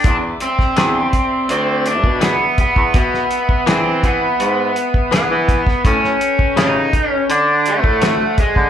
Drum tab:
HH |x-x-x-x-x-x-x-x-|x-x-x-x-x-x-x-x-|x-x-x-x-x-x-x-x-|
SD |---oo-------o---|-o--o-------o--o|-o--o-------o---|
BD |o--o--o----o--oo|o--o--o----o--oo|o--o--o----o--oo|